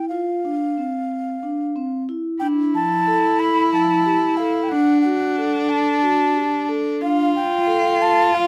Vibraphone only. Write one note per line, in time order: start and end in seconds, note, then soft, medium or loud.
0.11 0.39 F4 medium
0.45 0.73 D4 medium
0.78 1.34 C4 medium
1.43 1.71 D4 medium
1.76 2.04 C4 medium
2.09 2.37 E4 medium
2.41 2.69 D4 medium
2.74 3.02 F3 medium
3.07 3.64 A4 medium
3.72 4.01 F3 medium
4.06 4.34 G4 medium
4.39 4.67 A4 medium
4.72 5.00 D4 medium
5.05 5.33 F#4 medium
5.38 5.94 A4 medium
6.03 6.31 F#4 medium
6.36 6.64 G4 medium
6.69 6.97 A4 medium
7.01 7.29 D4 medium
7.34 7.62 F4 medium
7.67 8.23 A4 medium
8.32 8.47 F4 medium